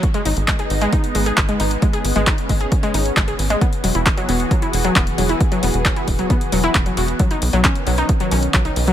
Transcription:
<<
  \new Staff \with { instrumentName = "Analog synth pad" } { \time 4/4 \key gis \minor \tempo 4 = 134 << { <gis b>1~ | <gis b>1 | <e b fis'>1~ | <e b fis'>1 |
dis1 | } \\ { dis'1 | cis'1 | gis'1~ | gis'1 |
cis'1 | } >> }
  \new Staff \with { instrumentName = "Synth arpeggio sound" } { \clef bass \time 4/4 \key gis \minor r16 gis16 dis'16 r16 gis16 gis'16 r16 gis16 dis'16 r16 gis16 gis'16 r16 gis16 dis'16 r16 | gis16 gis'16 r16 gis16 dis'16 r16 gis16 gis'16 r16 gis16 dis'16 r16 gis16 gis'16 r16 gis16 | b16 r16 fis16 e'16 r16 fis16 b16 r16 fis16 e'16 r16 fis16 b16 r16 fis16 e'16 | r16 fis16 b16 r16 fis16 e'16 r16 fis16 b16 r16 fis16 e'16 r16 fis16 fis'16 r16 |
fis16 dis'16 r16 fis16 cis'16 r16 fis16 dis'16 r16 fis16 cis'16 r16 fis16 dis'16 r16 fis16 | }
  \new Staff \with { instrumentName = "Analog synth bass" } { \clef bass \time 4/4 \key gis \minor r8 gis,,16 gis,,8 r16 gis,,8 r8 gis,,8 gis,,8 gis,,8 | r8 gis,,16 gis,,8 r16 gis,,8 r8 gis,,8 gis,,8 gis,,8 | r8 e,,16 e,,8 r16 e,,8 r8 e,,8 e,,8 e,,8 | r8 e,,16 e,,8 r16 e,,8 r8 e,,8 e,,8 e,,8 |
r8 b,,16 b,,8 r16 b,,8 r8 b,,8 b,,8 b,,8 | }
  \new DrumStaff \with { instrumentName = "Drums" } \drummode { \time 4/4 <hh bd>16 hh16 hho16 hh16 <hc hh bd>16 hh16 hho16 hh16 <hh bd>16 hh16 hho16 hh16 <hc hh bd>16 hh16 hho16 hh16 | <hh bd>16 hh16 hho16 hh16 <hc hh bd>16 hh16 <hho bd>16 hh16 <hh bd>16 hh16 hho16 hh16 <hc hh bd>16 hh16 hho16 hh16 | <hh bd>16 hh16 hho16 hh16 <hc hh bd>16 hh16 hho16 hh16 <hh bd>16 hh16 hho16 hh16 <hc hh bd>16 hh16 hho16 hh16 | <hh bd>16 hh16 hho16 hh16 <hc hh bd>16 hh16 <hho bd>16 hh16 <hh bd>16 hh16 hho16 hh16 <hc hh bd>16 hh16 hho16 hh16 |
<hh bd>16 hh16 hho16 hh16 <hc hh bd>16 hh16 hho16 hh16 <hh bd>16 hh16 hho16 hh16 <hc hh bd>16 hh16 hho16 hh16 | }
>>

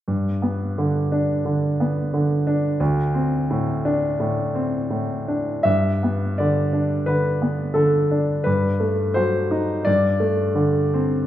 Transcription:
<<
  \new Staff \with { instrumentName = "Grand piano" } { \time 4/4 \key g \major \tempo 4 = 86 r1 | r1 | e''4 d''4 b'4 a'4 | b'4 c''4 d''2 | }
  \new Staff \with { instrumentName = "Grand piano" } { \clef bass \time 4/4 \key g \major g,8 b8 d8 d'8 d8 b8 d8 d'8 | d,8 c'8 a,8 d'8 a,8 c'8 a,8 d'8 | g,8 b8 d8 d'8 d8 b8 d8 d'8 | g,8 a8 fis8 dis'8 g,8 a8 d8 c'8 | }
>>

